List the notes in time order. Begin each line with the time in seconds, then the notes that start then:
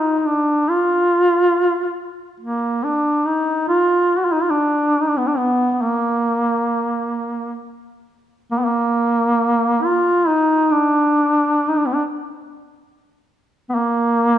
Already playing: D#4
0.19 D#4
0.26 D4
0.69 F4
2.40 A#3
2.84 D4
3.27 D#4
3.69 F4
4.18 F#4
4.25 F4
4.32 D#4
4.43 F4
4.50 D4
5.00 D#4
5.08 D4
5.18 B3
5.27 D4
5.37 B3
5.71 B3
5.81 A#3
8.51 A#3
8.59 B3
8.65 A#3
9.83 F4
10.28 D#4
10.71 D4
11.69 D#4
11.77 D4
11.86 B3
11.94 D4
13.69 B3
13.75 A#3